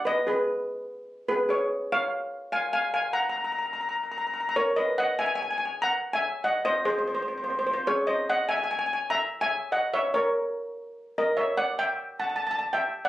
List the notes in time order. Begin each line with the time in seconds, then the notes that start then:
0.05 B4 D#5
0.27 G#4 B4
1.29 G#4 B4
1.49 G#4 C#5
1.92 C#5 F5
2.52 F5 G#5
2.73 F5 G#5
2.94 F5 G#5
3.13 F#5 A#5
3.21 A#5
3.29 A#5
3.36 A#5
3.44 A#5
3.52 A#5
3.59 A#5
3.66 A#5
3.73 A#5
3.81 A#5
3.89 A#5
3.95 A#5
4.04 A#5
4.12 A#5
4.18 A#5
4.27 A#5
4.34 A#5
4.41 A#5
4.49 A#5
4.56 A#4 C#5 A#5
4.76 B4 D#5
4.98 D#5 F#5
5.19 E5 G#5
5.26 G#5
5.35 G#5
5.43 G#5
5.51 G#5
5.58 G#5
5.65 G#5
5.82 F#5 A#5
6.13 E5 G#5
6.44 D#5 F#5
6.65 C5 D#5
6.85 G#4 C5
6.90 C5
6.98 C5
7.08 C5
7.15 C5
7.22 C5
7.28 C5
7.38 C5
7.44 C5
7.50 C5
7.59 C5
7.67 C5
7.74 C5
7.87 G#4 C#5
8.07 C5 D#5
8.30 D#5 F#5
8.49 E5 G#5
8.57 G#5
8.64 G#5
8.71 G#5
8.79 G#5
8.86 G#5
8.93 G#5
9.10 E5 A#5
9.41 E5 G#5
9.72 D#5 F#5
9.94 C#5 E5
10.14 A#4 C#5
11.18 A#4 D#5
11.37 C#5 E5
11.57 D5 F#5
11.79 E5 G5
12.20 F#5 A5
12.30 A5
12.36 A5
12.47 A5
12.51 A5
12.59 A5
12.73 E5 G5
13.05 D5 F#5